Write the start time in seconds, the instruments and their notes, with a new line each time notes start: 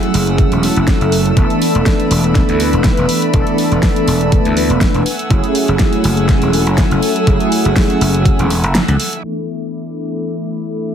Already playing: analog polysynth F#3 A3 C#4 E4 G#4, violin section A3 F#5 E6
0.03 closed hi-hat
0.14 slap bass F#1, open hi-hat
0.27 closed hi-hat
0.38 kick, closed hi-hat
0.52 slap bass E1, closed hi-hat
0.62 analog polysynth F#3 A3 C#4 E4 A4, open hi-hat
0.76 slap bass F#1, closed hi-hat
0.87 kick, snare, closed hi-hat
1.01 slap bass F#1, closed hi-hat
1.12 open hi-hat
1.25 closed hi-hat
1.36 slap bass E1, analog polysynth E3 A3 B3 D4 A4, violin section D5 B5, kick, closed hi-hat
1.50 closed hi-hat
1.62 open hi-hat
1.75 slap bass E1, closed hi-hat
1.86 kick, snare, closed hi-hat
2.00 closed hi-hat
2.11 slap bass E1, open hi-hat
2.24 closed hi-hat
2.35 kick, snare, closed hi-hat
2.49 slap bass D2, closed hi-hat
2.59 analog polysynth E3 A3 B3 D4 B4, open hi-hat
2.73 slap bass E1, closed hi-hat
2.84 kick, snare, closed hi-hat
2.97 slap bass E1, closed hi-hat
3.09 open hi-hat
3.22 closed hi-hat
3.32 slap bass E1, analog polysynth E3 A3 B3 D4 A4, kick, closed hi-hat
3.47 closed hi-hat
3.58 open hi-hat
3.71 slap bass E1, closed hi-hat
3.83 kick, snare, open hi-hat
3.96 closed hi-hat
4.07 slap bass E1, open hi-hat
4.21 closed hi-hat
4.32 kick, closed hi-hat
4.45 slap bass D2, closed hi-hat
4.56 analog polysynth E3 A3 B3 D4 B4, open hi-hat
4.70 slap bass E1, closed hi-hat
4.81 kick, snare, closed hi-hat
4.94 slap bass E1, closed hi-hat
5.06 violin section A3 F#5 G#5 E6, open hi-hat
5.19 closed hi-hat
5.29 slap bass F#1, analog polysynth F#3 A3 C#4 E4 G#4, kick, closed hi-hat
5.44 closed hi-hat
5.55 open hi-hat
5.68 slap bass F#1, closed hi-hat
5.79 kick, snare, closed hi-hat
5.93 closed hi-hat
6.04 slap bass F#1, open hi-hat
6.17 closed hi-hat
6.28 kick, snare, closed hi-hat
6.42 slap bass E1, closed hi-hat
6.52 analog polysynth F#3 A3 C#4 E4 A4, open hi-hat
6.67 slap bass F#1, closed hi-hat
6.78 kick, snare, closed hi-hat
6.91 slap bass F#1, closed hi-hat
7.03 open hi-hat
7.16 closed hi-hat
7.26 slap bass F#1, analog polysynth F#3 A3 C#4 E4 G#4, kick, closed hi-hat
7.40 closed hi-hat
7.52 open hi-hat
7.65 slap bass F#1, closed hi-hat
7.76 kick, snare, open hi-hat
7.90 closed hi-hat
8.01 slap bass F#1, open hi-hat
8.14 closed hi-hat
8.26 kick, closed hi-hat
8.39 slap bass E1, closed hi-hat
8.50 open hi-hat
8.64 slap bass F#1, closed hi-hat
8.75 snare, closed hi-hat
8.88 slap bass C#2, closed hi-hat
9.00 open hi-hat
9.13 closed hi-hat
9.23 analog polysynth E3 A3 B3 D4 A4, violin section E4 E5 D6